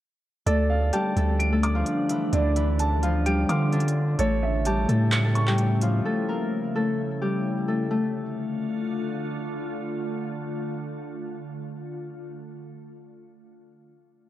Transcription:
0.47 0.91 D2 loud
0.47 4.15 D3 medium
0.47 1.17 A3 medium
0.47 4.15 D4 medium
0.47 1.16 A4 loud
0.47 1.63 D5 medium
0.47 closed hi-hat medium
0.70 1.86 F5 medium
0.93 2.38 G3 medium
0.93 3.25 G4 medium
0.93 2.10 A5 medium
0.93 closed hi-hat medium
1.16 1.83 D2 loud
1.16 1.53 A3 medium
1.16 1.52 A4 medium
1.16 closed hi-hat medium
1.39 2.56 D7 medium
1.39 closed hi-hat medium
1.52 4.19 A3 medium
1.52 3.72 A4 medium
1.63 2.79 D6 medium
1.63 closed hi-hat medium
1.75 2.38 F3 medium
1.75 2.16 F4 medium
1.86 closed hi-hat medium
2.09 2.38 E3 medium
2.09 2.55 E4 medium
2.09 closed hi-hat medium
2.33 3.45 D2 loud
2.33 3.72 D3 medium
2.33 3.72 D4 medium
2.33 3.49 D5 medium
2.33 closed hi-hat medium
2.56 3.77 E3 medium
2.56 3.09 E4 medium
2.56 closed hi-hat medium
2.79 3.96 A5 medium
2.79 closed hi-hat medium
3.03 3.48 F3 medium
3.03 3.48 F4 medium
3.03 closed hi-hat medium
3.26 3.77 G3 medium
3.26 4.66 G4 medium
3.26 4.19 D7 medium
3.26 closed hi-hat medium
3.49 4.16 D3 medium
3.49 3.77 F3 medium
3.49 5.82 F4 medium
3.49 4.19 D6 medium
3.49 closed hi-hat medium
3.72 4.24 D3 medium
3.72 6.52 D4 medium
3.72 closed hi-hat soft
3.80 closed hi-hat medium
3.88 closed hi-hat medium
4.19 4.86 A1 loud
4.19 7.87 C#3 medium
4.19 4.89 A3 medium
4.19 7.87 E4 medium
4.19 4.88 A4 loud
4.19 5.35 C#5 medium
4.19 closed hi-hat medium
4.43 5.59 E5 medium
4.65 5.47 G3 medium
4.65 5.47 G4 medium
4.65 5.82 A5 medium
4.65 closed hi-hat medium
4.88 6.01 A2 loud
4.88 5.25 A3 medium
4.88 5.24 A4 medium
4.88 closed hi-hat medium
5.12 6.28 C#7 medium
5.12 clap loud
5.12 closed hi-hat medium
5.24 6.06 A3 medium
5.24 6.05 A4 medium
5.35 6.51 C#6 medium
5.35 closed hi-hat medium
5.47 7.21 G3 medium
5.47 7.21 G4 medium
5.47 clap medium
5.58 closed hi-hat medium
5.81 7.96 F3 medium
5.81 8.35 F4 medium
5.81 closed hi-hat medium
6.05 6.35 A3 medium
6.05 6.34 A4 medium
6.29 6.81 A#3 medium
6.29 6.81 A#4 medium
6.75 7.69 A3 medium
6.75 7.68 A4 medium
7.22 7.96 G3 medium
7.22 9.57 G4 medium
7.68 7.90 A3 medium
7.68 9.88 A4 medium
7.91 12.08 D3 medium
7.91 11.24 A3 medium
7.91 12.08 A3 medium
7.91 12.08 F4 medium

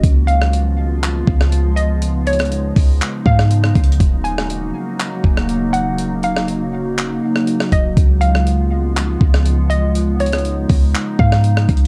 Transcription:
0.03 1.23 C#2 loud
0.03 11.87 C#3 medium
0.03 3.96 F3 medium
0.03 3.96 G#3 medium
0.03 3.96 B3 medium
0.03 2.00 F4 medium
0.03 kick loud
0.03 closed hi-hat medium
0.27 1.72 F5 medium
0.27 closed hi-hat medium
0.42 cross-stick medium
0.53 closed hi-hat medium
1.03 clap loud
1.03 closed hi-hat medium
1.27 2.72 C#2 loud
1.27 kick loud
1.41 cross-stick medium
1.52 closed hi-hat medium
1.76 2.00 D#5 medium
1.76 closed hi-hat medium
2.02 7.93 D#4 medium
2.02 closed hi-hat medium
2.27 3.22 C#5 medium
2.27 closed hi-hat medium
2.33 closed hi-hat medium
2.39 cross-stick loud
2.39 closed hi-hat soft
2.45 closed hi-hat soft
2.52 closed hi-hat medium
2.76 3.00 C#2 loud
2.76 kick loud
2.76 open hi-hat medium
3.01 clap loud
3.01 closed hi-hat medium
3.26 3.73 G#2 loud
3.26 3.96 F5 medium
3.26 kick loud
3.39 cross-stick medium
3.51 closed hi-hat medium
3.64 cross-stick loud
3.75 3.99 C#2 loud
3.75 kick medium
3.75 closed hi-hat medium
3.84 closed hi-hat medium
3.92 closed hi-hat medium
4.00 4.72 D#1 loud
4.00 7.93 F#3 medium
4.00 7.93 A#3 medium
4.00 7.93 F#4 medium
4.00 kick loud
4.00 closed hi-hat medium
4.24 5.69 G#5 medium
4.24 closed hi-hat medium
4.38 cross-stick medium
4.50 closed hi-hat medium
4.99 clap loud
4.99 closed hi-hat medium
5.24 7.18 D#1 loud
5.24 kick loud
5.37 cross-stick medium
5.49 closed hi-hat medium
5.73 5.97 F#5 medium
5.73 closed hi-hat medium
5.98 closed hi-hat medium
6.23 7.68 F5 medium
6.23 closed hi-hat medium
6.37 cross-stick medium
6.48 closed hi-hat medium
6.98 clap loud
6.98 closed hi-hat medium
7.36 cross-stick medium
7.47 closed hi-hat medium
7.60 cross-stick medium
7.72 7.96 D#1 loud
7.72 7.96 D#5 medium
7.72 kick medium
7.72 closed hi-hat medium
7.97 9.17 C#2 loud
7.97 11.87 F3 medium
7.97 11.87 G#3 medium
7.97 11.87 B3 medium
7.97 9.93 F4 medium
7.97 kick loud
7.97 closed hi-hat medium
8.21 9.66 F5 medium
8.21 closed hi-hat medium
8.35 cross-stick medium
8.47 closed hi-hat medium
8.96 clap loud
8.96 closed hi-hat medium
9.21 10.66 C#2 loud
9.21 kick loud
9.34 cross-stick medium
9.46 closed hi-hat medium
9.70 9.94 D#5 medium
9.70 closed hi-hat medium
9.95 11.87 D#4 medium
9.95 closed hi-hat medium
10.20 11.15 C#5 medium
10.20 closed hi-hat medium
10.26 closed hi-hat medium
10.32 cross-stick medium
10.32 closed hi-hat soft
10.39 closed hi-hat soft
10.45 closed hi-hat medium
10.69 10.93 C#2 loud
10.69 kick loud
10.69 open hi-hat medium
10.94 clap loud
10.94 closed hi-hat medium
11.19 11.67 G#2 loud
11.19 11.87 F5 medium
11.19 kick loud
11.32 cross-stick medium
11.44 closed hi-hat medium
11.57 cross-stick loud
11.69 11.87 C#2 loud
11.69 kick medium
11.69 closed hi-hat medium
11.77 closed hi-hat medium

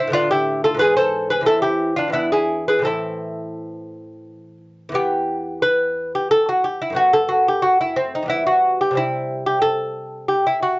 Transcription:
0.00 0.14 C4 medium
0.00 0.13 E4 loud
0.07 0.75 A2 medium
0.07 0.76 D3 medium
0.12 0.77 B3 medium
0.12 0.30 D4 loud
0.12 0.31 F4 loud
0.31 0.62 E4 medium
0.31 0.63 G4 loud
0.64 0.80 F4 medium
0.64 0.79 A4 loud
0.74 1.41 G#2 medium
0.74 1.41 E3 medium
0.79 1.44 B3 medium
0.79 0.96 G#4 loud
0.79 0.96 B4 loud
0.97 1.29 A4 loud
0.97 1.29 C5 loud
1.30 1.46 G#4 medium
1.30 1.46 B4 loud
1.41 2.07 E2 medium
1.41 2.08 E3 medium
1.46 1.98 C4 medium
1.46 1.62 E4 medium
1.46 1.62 A4 loud
1.62 1.95 E4 medium
1.62 1.95 G4 loud
1.96 2.11 D4 medium
1.96 2.13 F4 loud
2.08 2.78 E2 medium
2.08 2.79 E3 medium
2.12 2.30 B3 medium
2.12 2.81 D4 medium
2.12 2.31 E4 loud
2.32 2.65 E4 medium
2.32 2.65 G#4 loud
2.68 2.84 G#4 medium
2.68 2.84 B4 loud
2.79 4.88 A2 medium
2.79 4.90 E3 medium
2.83 4.90 C4 medium
2.83 4.57 E4 medium
2.83 4.56 A4 medium
4.89 6.90 E2 medium
4.89 6.92 E3 medium
4.94 6.93 B3 medium
4.94 5.60 G4 loud
5.62 6.11 B4 loud
6.15 6.31 G4 medium
6.31 6.48 A4 loud
6.49 6.65 F#4 medium
6.64 6.81 G4 loud
6.82 6.96 E4 medium
6.90 8.22 F#2 medium
6.90 8.24 A3 medium
6.95 7.96 B3 medium
6.95 7.13 F#4 loud
7.13 7.30 A4 loud
7.29 7.46 F#4 medium
7.48 7.64 G4 loud
7.62 7.80 F#4 loud
7.81 7.97 E4 medium
7.96 8.13 C4 medium
8.15 8.29 D#4 medium
8.23 8.90 E2 medium
8.23 8.92 G3 medium
8.28 8.93 B3 medium
8.28 8.46 E4 loud
8.47 8.78 F#4 loud
8.81 8.97 G4 medium
8.91 10.79 C3 medium
8.91 10.79 G3 soft
8.95 10.79 C4 medium
8.95 9.45 E4 loud
9.46 9.61 G4 medium
9.62 10.25 A4 loud
10.28 10.45 G4 medium
10.47 10.62 E4 medium
10.62 10.78 F#4 medium

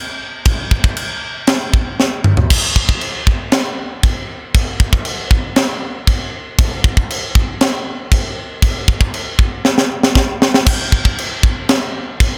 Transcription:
0.45 kick loud
0.45 crash medium
0.71 kick medium
0.84 kick medium
0.97 crash medium
1.47 snare loud
1.47 crash medium
1.74 kick medium
2.00 snare medium
2.24 mid tom loud
2.37 floor tom medium
2.50 kick loud
2.50 crash loud
2.50 china medium
2.76 kick medium
2.89 kick medium
3.01 china medium
3.27 kick medium
3.52 snare loud
3.52 china medium
4.03 kick medium
4.03 china medium
4.54 kick loud
4.54 china medium
4.80 kick medium
4.93 kick medium
5.05 china medium
5.31 kick medium
5.56 snare loud
5.56 china medium
6.07 kick medium
6.07 china medium
6.59 kick loud
6.59 china medium
6.84 kick medium
6.97 kick medium
7.10 china medium
7.35 kick medium
7.61 snare loud
7.61 china medium
8.12 kick medium
8.12 china medium
8.62 kick loud
8.62 china medium
8.88 kick medium
9.01 kick medium
9.14 china medium
9.39 kick medium
9.65 snare medium
9.78 snare medium
10.03 snare medium
10.15 kick medium
10.15 snare medium
10.42 snare loud
10.54 snare medium
10.67 kick loud
10.67 china medium
10.67 crash loud
10.92 kick medium
11.05 kick medium
11.18 china medium
11.43 kick medium
11.69 snare loud
11.69 china medium
12.20 kick medium
12.20 china medium

